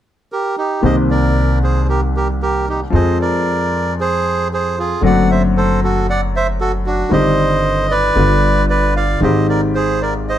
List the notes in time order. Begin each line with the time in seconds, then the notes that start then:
0.32 G4 A#4
0.58 D#4 G4
0.81 C2 C3 D#3 A#3 C4 C5 D#5
0.86 G4
1.11 A#4 D5
1.63 G#4 C5
1.89 G4 A#4
2.16 G4 A#4
2.42 G4 A#4
2.69 D#4 G4
2.90 F2 F3 G#3 C4
2.95 G#4 C5 D#5
3.21 A#4 D5
4.00 G#4 C5
4.53 G#4 C5
4.79 F4 G#4
5.01 F#1 F#2 D3 F#3 A3 C4
5.05 F#4 D5 F#5
5.31 C5 E5
5.57 A4 C5
5.84 F#4 A4
6.10 D5 F#5
6.36 C5 E5
6.60 F#4 A4
6.86 D4 F#4
7.09 G1 G2 D#3 G3 C4 C5 D#5
7.14 G4
7.91 B4 D5
8.15 G1 G2 D3 G3 B3
8.19 F4
8.70 B4 D5
8.96 D5 F5
9.20 G#1 G#2 D#3 G#3 C4 C5 D#5
9.24 G4
9.49 A#4 D5
9.75 G#4 C5
10.02 A#4 D5
10.29 C5 D#5